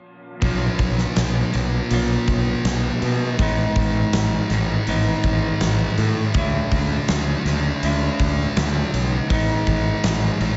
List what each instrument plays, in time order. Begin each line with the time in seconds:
0.42 fingered electric bass B1, overdriven electric guitar B2 F#3 B3 D4 F#4, kick, open hi-hat
0.79 fingered electric bass B1, kick, open hi-hat
0.98 snare
1.16 fingered electric bass B1, snare, open hi-hat
1.52 fingered electric bass B1, distorted electric guitar B2 F#3 B3, open hi-hat
1.90 fingered electric bass B1, overdriven electric guitar B2 F#3 B3 D4 F#4, open hi-hat
2.28 fingered electric bass B1, kick, open hi-hat
2.64 fingered electric bass B1, snare, open hi-hat
3.02 fingered electric bass B2, open hi-hat
3.39 fingered electric bass A1, overdriven electric guitar A2 E3 A3 C4 E4, kick, open hi-hat
3.76 fingered electric bass A1, kick, open hi-hat
4.13 fingered electric bass A1, snare, open hi-hat
4.49 fingered electric bass A1, distorted electric guitar A2 E3 A3, snare, open hi-hat
4.87 fingered electric bass A1, overdriven electric guitar A2 E3 A3 C4 E4, open hi-hat
5.23 fingered electric bass A1, kick, open hi-hat
5.61 fingered electric bass A1, snare, open hi-hat
5.98 fingered electric bass A2, open hi-hat
6.34 fingered electric bass D2, overdriven electric guitar D3 A3 D4 F4, kick, open hi-hat
6.72 fingered electric bass D2, kick, open hi-hat
7.08 fingered electric bass D2, snare, open hi-hat
7.45 fingered electric bass D2, distorted electric guitar D3 A3 D4, snare, open hi-hat
7.82 fingered electric bass D2, overdriven electric guitar D3 A3 D4 F4, open hi-hat
8.20 fingered electric bass D2, kick, open hi-hat
8.57 fingered electric bass D2, snare, open hi-hat
8.94 fingered electric bass B1, open hi-hat
9.30 fingered electric bass A1, overdriven electric guitar A2 E3 A3 C4 E4, kick, open hi-hat
9.67 fingered electric bass A1, kick, open hi-hat
10.03 fingered electric bass A1, snare, open hi-hat
10.40 fingered electric bass A1, distorted electric guitar A2 E3 A3, open hi-hat